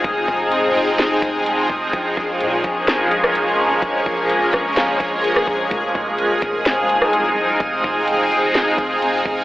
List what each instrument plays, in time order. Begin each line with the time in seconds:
Already playing: ambient pad F3 G#3 C4 D#4 G#4, synth texture G#4 D#6
0.04 808-style bass F1, synth texture G5, kick, closed hi-hat
0.28 808-style bass F1, kick
0.52 closed hi-hat
0.75 open hi-hat
0.99 snare, closed hi-hat
1.22 808-style bass F1, kick, closed hi-hat
1.46 closed hi-hat
1.69 808-style bass F1, kick
1.93 808-style bass A#1, ambient pad A#3 C#4 G#4, synth texture A#4 G#5 C#6, kick, closed hi-hat
2.17 808-style bass A#1, kick
2.40 808-style bass A#2, closed hi-hat
2.64 808-style bass A#1, kick, closed hi-hat
2.88 snare, closed hi-hat
3.11 closed hi-hat
3.24 cross-stick
3.35 closed hi-hat
3.82 808-style bass A#1, kick, closed hi-hat
4.06 808-style bass A#1, kick
4.30 closed hi-hat
4.53 808-style bass A#1, kick, cross-stick, closed hi-hat
4.77 snare, closed hi-hat
5.00 808-style bass A#1, kick, closed hi-hat
5.24 closed hi-hat
5.36 cross-stick
5.47 808-style bass A#1, kick
5.71 808-style bass F1, ambient pad C4 D#4, synth texture G#4 F5 D#6, kick, closed hi-hat
5.95 808-style bass F1, kick
6.18 808-style bass D#1, closed hi-hat
6.42 808-style bass F1, kick, closed hi-hat
6.66 snare, closed hi-hat
6.89 closed hi-hat
7.01 808-style bass C2, cross-stick
7.13 closed hi-hat
7.60 808-style bass F1, kick, closed hi-hat
7.84 808-style bass F1, kick
8.08 closed hi-hat
8.31 open hi-hat
8.55 snare, closed hi-hat
8.78 808-style bass F1, kick, closed hi-hat
9.02 closed hi-hat
9.25 808-style bass F1, kick